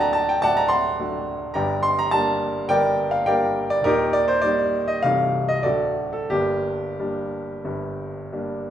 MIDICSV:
0, 0, Header, 1, 2, 480
1, 0, Start_track
1, 0, Key_signature, -2, "minor"
1, 0, Tempo, 569801
1, 1318, Time_signature, 4, 2, 24, 8
1, 2767, Tempo, 582524
1, 4207, Tempo, 630915
1, 5167, Tempo, 676437
1, 6876, End_track
2, 0, Start_track
2, 0, Title_t, "Grand piano"
2, 0, Program_c, 0, 0
2, 0, Control_c, 0, 64, 127
2, 0, Note_on_c, 0, 26, 71
2, 0, Note_on_c, 0, 38, 83
2, 0, Note_on_c, 0, 54, 64
2, 0, Note_on_c, 0, 57, 67
2, 0, Note_on_c, 0, 62, 66
2, 0, Note_on_c, 0, 74, 92
2, 0, Note_on_c, 0, 75, 100
2, 0, Note_on_c, 0, 78, 91
2, 0, Note_on_c, 0, 79, 109
2, 0, Note_on_c, 0, 81, 112
2, 6, Note_on_c, 0, 82, 113
2, 109, Note_off_c, 0, 81, 0
2, 109, Note_on_c, 0, 81, 111
2, 126, Note_off_c, 0, 82, 0
2, 237, Note_off_c, 0, 81, 0
2, 244, Note_off_c, 0, 79, 0
2, 244, Note_on_c, 0, 79, 109
2, 319, Note_off_c, 0, 38, 0
2, 332, Note_off_c, 0, 54, 0
2, 335, Note_off_c, 0, 57, 0
2, 335, Note_off_c, 0, 62, 0
2, 337, Note_off_c, 0, 26, 0
2, 354, Note_on_c, 0, 81, 125
2, 363, Note_off_c, 0, 79, 0
2, 366, Note_off_c, 0, 78, 0
2, 366, Note_on_c, 0, 38, 67
2, 366, Note_on_c, 0, 78, 102
2, 367, Note_off_c, 0, 74, 0
2, 367, Note_on_c, 0, 74, 102
2, 369, Note_on_c, 0, 26, 75
2, 475, Note_off_c, 0, 78, 0
2, 476, Note_off_c, 0, 74, 0
2, 477, Note_off_c, 0, 81, 0
2, 477, Note_on_c, 0, 82, 122
2, 576, Note_on_c, 0, 84, 121
2, 585, Note_on_c, 0, 78, 88
2, 586, Note_on_c, 0, 81, 90
2, 597, Note_off_c, 0, 82, 0
2, 838, Note_on_c, 0, 57, 61
2, 840, Note_on_c, 0, 54, 61
2, 843, Note_on_c, 0, 62, 66
2, 1277, Note_off_c, 0, 78, 0
2, 1278, Note_off_c, 0, 81, 0
2, 1285, Note_off_c, 0, 57, 0
2, 1286, Note_off_c, 0, 54, 0
2, 1288, Note_off_c, 0, 62, 0
2, 1291, Note_off_c, 0, 38, 0
2, 1292, Note_off_c, 0, 26, 0
2, 1296, Note_on_c, 0, 82, 100
2, 1305, Note_on_c, 0, 79, 81
2, 1306, Note_off_c, 0, 84, 0
2, 1307, Note_on_c, 0, 43, 80
2, 1309, Note_on_c, 0, 74, 86
2, 1311, Note_on_c, 0, 31, 78
2, 1335, Control_c, 0, 64, 0
2, 1338, Note_off_c, 0, 75, 0
2, 1451, Control_c, 0, 64, 127
2, 1537, Note_off_c, 0, 79, 0
2, 1538, Note_on_c, 0, 84, 123
2, 1539, Note_off_c, 0, 74, 0
2, 1549, Note_off_c, 0, 82, 0
2, 1671, Note_off_c, 0, 84, 0
2, 1673, Note_on_c, 0, 82, 127
2, 1780, Note_on_c, 0, 81, 127
2, 1794, Note_on_c, 0, 55, 69
2, 1799, Note_on_c, 0, 58, 69
2, 1800, Note_off_c, 0, 82, 0
2, 1802, Note_on_c, 0, 62, 71
2, 2248, Note_off_c, 0, 55, 0
2, 2250, Note_off_c, 0, 58, 0
2, 2252, Note_off_c, 0, 43, 0
2, 2252, Note_off_c, 0, 62, 0
2, 2254, Note_off_c, 0, 31, 0
2, 2264, Note_on_c, 0, 79, 127
2, 2272, Note_on_c, 0, 70, 96
2, 2275, Note_off_c, 0, 81, 0
2, 2275, Note_on_c, 0, 31, 72
2, 2275, Note_on_c, 0, 43, 71
2, 2276, Note_on_c, 0, 74, 102
2, 2611, Note_off_c, 0, 70, 0
2, 2614, Note_off_c, 0, 74, 0
2, 2621, Note_on_c, 0, 77, 106
2, 2633, Note_off_c, 0, 79, 0
2, 2747, Note_on_c, 0, 79, 108
2, 2754, Note_off_c, 0, 77, 0
2, 2755, Note_on_c, 0, 55, 65
2, 2755, Note_on_c, 0, 74, 93
2, 2756, Note_on_c, 0, 58, 68
2, 2760, Note_on_c, 0, 70, 93
2, 2762, Note_on_c, 0, 62, 63
2, 3095, Note_off_c, 0, 74, 0
2, 3097, Note_off_c, 0, 70, 0
2, 3111, Note_on_c, 0, 74, 117
2, 3117, Note_off_c, 0, 79, 0
2, 3205, Note_on_c, 0, 27, 71
2, 3207, Note_off_c, 0, 55, 0
2, 3207, Note_off_c, 0, 58, 0
2, 3210, Note_off_c, 0, 62, 0
2, 3211, Note_off_c, 0, 31, 0
2, 3211, Note_off_c, 0, 43, 0
2, 3226, Note_on_c, 0, 70, 123
2, 3235, Note_on_c, 0, 63, 96
2, 3237, Note_on_c, 0, 67, 95
2, 3238, Note_off_c, 0, 74, 0
2, 3240, Note_on_c, 0, 39, 80
2, 3259, Control_c, 0, 64, 0
2, 3390, Control_c, 0, 64, 127
2, 3460, Note_off_c, 0, 63, 0
2, 3461, Note_off_c, 0, 67, 0
2, 3464, Note_on_c, 0, 74, 122
2, 3472, Note_off_c, 0, 70, 0
2, 3586, Note_on_c, 0, 72, 106
2, 3591, Note_off_c, 0, 74, 0
2, 3698, Note_on_c, 0, 74, 122
2, 3712, Note_off_c, 0, 72, 0
2, 3716, Note_on_c, 0, 55, 65
2, 3716, Note_on_c, 0, 58, 58
2, 3724, Note_on_c, 0, 63, 68
2, 4073, Note_off_c, 0, 74, 0
2, 4079, Note_on_c, 0, 75, 100
2, 4157, Note_off_c, 0, 27, 0
2, 4173, Note_off_c, 0, 55, 0
2, 4173, Note_off_c, 0, 58, 0
2, 4175, Note_off_c, 0, 39, 0
2, 4177, Note_off_c, 0, 63, 0
2, 4201, Note_on_c, 0, 77, 120
2, 4204, Note_off_c, 0, 75, 0
2, 4212, Note_on_c, 0, 24, 74
2, 4212, Note_on_c, 0, 55, 61
2, 4213, Note_on_c, 0, 36, 76
2, 4219, Note_on_c, 0, 57, 64
2, 4220, Note_on_c, 0, 63, 63
2, 4222, Control_c, 0, 64, 0
2, 4348, Control_c, 0, 64, 127
2, 4552, Note_off_c, 0, 77, 0
2, 4552, Note_on_c, 0, 75, 99
2, 4646, Note_off_c, 0, 55, 0
2, 4649, Note_off_c, 0, 57, 0
2, 4650, Note_off_c, 0, 63, 0
2, 4661, Note_on_c, 0, 74, 100
2, 4662, Note_off_c, 0, 24, 0
2, 4663, Note_off_c, 0, 36, 0
2, 4666, Note_on_c, 0, 69, 70
2, 4667, Note_on_c, 0, 54, 52
2, 4667, Note_on_c, 0, 66, 73
2, 4669, Note_on_c, 0, 26, 63
2, 4672, Note_off_c, 0, 75, 0
2, 4672, Note_on_c, 0, 38, 75
2, 4673, Note_on_c, 0, 57, 55
2, 4682, Note_on_c, 0, 62, 48
2, 4687, Control_c, 0, 64, 0
2, 4801, Control_c, 0, 64, 127
2, 5010, Note_off_c, 0, 69, 0
2, 5011, Note_off_c, 0, 66, 0
2, 5034, Note_off_c, 0, 74, 0
2, 5040, Note_on_c, 0, 69, 87
2, 5133, Note_off_c, 0, 54, 0
2, 5136, Note_off_c, 0, 57, 0
2, 5141, Note_off_c, 0, 62, 0
2, 5150, Note_off_c, 0, 26, 0
2, 5151, Note_off_c, 0, 38, 0
2, 5167, Note_off_c, 0, 69, 0
2, 5171, Note_on_c, 0, 67, 98
2, 5180, Note_on_c, 0, 62, 70
2, 5181, Control_c, 0, 64, 0
2, 5182, Note_on_c, 0, 58, 66
2, 5184, Note_on_c, 0, 43, 65
2, 5185, Note_on_c, 0, 31, 72
2, 5298, Control_c, 0, 64, 127
2, 5656, Note_off_c, 0, 58, 0
2, 5659, Note_off_c, 0, 62, 0
2, 5666, Note_on_c, 0, 55, 62
2, 5667, Note_on_c, 0, 58, 58
2, 5669, Note_on_c, 0, 62, 62
2, 6107, Note_off_c, 0, 55, 0
2, 6108, Note_off_c, 0, 58, 0
2, 6109, Note_off_c, 0, 62, 0
2, 6110, Note_off_c, 0, 31, 0
2, 6110, Note_off_c, 0, 43, 0
2, 6127, Note_on_c, 0, 43, 64
2, 6128, Note_on_c, 0, 31, 63
2, 6609, Note_on_c, 0, 55, 53
2, 6610, Note_on_c, 0, 58, 55
2, 6615, Note_on_c, 0, 62, 61
2, 6850, Note_off_c, 0, 67, 0
2, 6876, Note_off_c, 0, 31, 0
2, 6876, Note_off_c, 0, 43, 0
2, 6876, Note_off_c, 0, 55, 0
2, 6876, Note_off_c, 0, 58, 0
2, 6876, Note_off_c, 0, 62, 0
2, 6876, End_track
0, 0, End_of_file